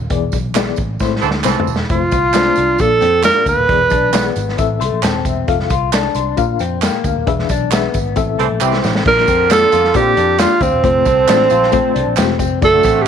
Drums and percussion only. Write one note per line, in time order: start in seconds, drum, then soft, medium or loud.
0.10 kick loud
0.10 closed hi-hat medium
0.10 tambourine soft
0.32 kick medium
0.32 closed hi-hat medium
0.32 tambourine medium
0.55 snare loud
0.55 clap medium
0.55 closed hi-hat medium
0.55 tambourine medium
0.76 kick medium
0.76 closed hi-hat medium
0.76 tambourine medium
0.99 kick medium
0.99 snare soft
0.99 tambourine medium
1.16 snare soft
1.22 tambourine soft
1.31 snare medium
1.44 snare medium
1.44 clap medium
1.44 tambourine medium
1.60 floor tom medium
1.67 tambourine soft
1.76 snare medium
1.89 kick loud
1.89 closed hi-hat medium
1.89 tambourine soft
2.11 kick medium
2.11 closed hi-hat medium
2.11 tambourine medium
2.34 snare loud
2.34 clap medium
2.34 closed hi-hat medium
2.34 tambourine medium
2.56 closed hi-hat medium
2.56 tambourine medium
2.78 kick medium
2.78 closed hi-hat medium
2.78 tambourine medium
3.01 closed hi-hat medium
3.01 tambourine soft
3.23 snare loud
3.23 clap medium
3.23 closed hi-hat medium
3.23 tambourine medium
3.46 kick medium
3.46 closed hi-hat medium
3.46 tambourine medium
3.69 kick loud
3.69 closed hi-hat medium
3.90 kick medium
3.90 closed hi-hat medium
3.90 tambourine medium
4.14 snare loud
4.14 clap medium
4.14 closed hi-hat medium
4.14 tambourine medium
4.36 closed hi-hat medium
4.36 tambourine medium
4.49 snare soft
4.58 kick medium
4.58 closed hi-hat medium
4.58 tambourine soft
4.81 closed hi-hat medium
4.81 tambourine soft
5.03 snare medium
5.03 clap medium
5.03 closed hi-hat medium
5.03 tambourine medium
5.25 kick medium
5.25 closed hi-hat medium
5.25 tambourine medium
5.48 kick loud
5.48 closed hi-hat medium
5.48 tambourine soft
5.60 snare soft
5.70 kick medium
5.70 closed hi-hat medium
5.70 tambourine medium
5.93 snare loud
5.93 clap medium
5.93 closed hi-hat medium
5.93 tambourine medium
6.14 closed hi-hat medium
6.14 tambourine medium
6.37 kick medium
6.37 closed hi-hat medium
6.37 tambourine medium
6.59 closed hi-hat medium
6.59 tambourine soft
6.82 snare medium
6.82 clap medium
6.82 closed hi-hat medium
6.82 tambourine medium
7.04 kick medium
7.04 closed hi-hat medium
7.04 tambourine soft
7.27 kick loud
7.27 closed hi-hat medium
7.27 tambourine soft
7.39 snare soft
7.49 kick medium
7.49 closed hi-hat medium
7.49 tambourine medium
7.71 snare loud
7.71 clap medium
7.71 closed hi-hat medium
7.71 tambourine medium
7.94 kick medium
7.94 closed hi-hat medium
7.94 tambourine medium
8.16 kick medium
8.16 closed hi-hat medium
8.16 tambourine medium
8.39 closed hi-hat medium
8.61 clap medium
8.61 tambourine medium
8.73 snare medium
8.84 snare medium
8.84 tambourine medium
8.95 snare medium
9.06 kick loud
9.06 crash medium
9.18 snare soft
9.27 kick medium
9.27 closed hi-hat medium
9.27 tambourine medium
9.50 snare loud
9.50 clap medium
9.50 closed hi-hat medium
9.50 tambourine medium
9.72 closed hi-hat medium
9.72 tambourine medium
9.84 snare soft
9.94 kick medium
9.94 closed hi-hat medium
9.94 tambourine medium
10.17 closed hi-hat medium
10.17 tambourine soft
10.39 snare loud
10.39 clap medium
10.39 closed hi-hat medium
10.39 tambourine medium
10.61 kick medium
10.61 closed hi-hat medium
10.61 tambourine medium
10.84 kick loud
10.84 closed hi-hat medium
10.84 tambourine soft
11.05 kick medium
11.05 closed hi-hat medium
11.05 tambourine medium
11.28 snare loud
11.28 clap medium
11.28 closed hi-hat medium
11.28 tambourine medium
11.50 closed hi-hat medium
11.50 tambourine medium
11.63 snare soft
11.72 kick medium
11.72 closed hi-hat medium
11.72 tambourine soft
11.96 closed hi-hat medium
12.17 snare loud
12.17 clap medium
12.17 closed hi-hat medium
12.17 tambourine medium
12.39 kick medium
12.39 closed hi-hat medium
12.39 tambourine soft
12.62 kick loud
12.62 closed hi-hat medium
12.62 tambourine soft
12.83 kick medium
12.83 closed hi-hat medium
12.83 tambourine medium